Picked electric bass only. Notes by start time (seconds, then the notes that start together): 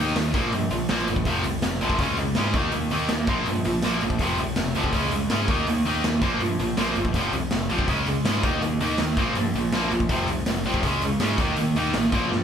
Already playing: D#2
0.15 D#2
0.34 A#1
0.54 G2
0.71 A#1
0.90 A#1
1.08 G1
1.26 F1
1.45 C2
1.63 F1
1.82 A#1
1.99 C#2
2.19 C#2
2.38 G#2
2.54 D#2
2.75 D#2
2.92 D#2
3.10 D#2
3.28 A#1
3.48 G2
3.66 A#1
3.85 A#1
4.03 A#1
4.19 F1
4.39 C2
4.57 F1
4.76 D2
4.93 C#2
5.12 C#2
5.30 G#2
5.48 D#2
5.67 D#2
5.85 D#2
6.04 D#2
6.22 A#1
6.41 G2
6.59 A#1
6.77 A#1
6.96 G1
7.14 F1
7.33 C2
7.52 F1
7.70 A#1
7.88 C#2
8.07 C#2
8.25 G#2
8.43 D#2
8.63 D#2
8.80 D#2
9.00 D#2
9.17 A#1
9.36 G2
9.54 A#1
9.73 A#1
9.91 A#1
10.09 F1
10.27 C2
10.45 F1
10.64 A#1
10.83 C#2
11.01 C#2
11.20 G#2
11.38 D#2
11.57 D#2
11.76 D#2
11.94 A1
12.13 A#1
12.32 G2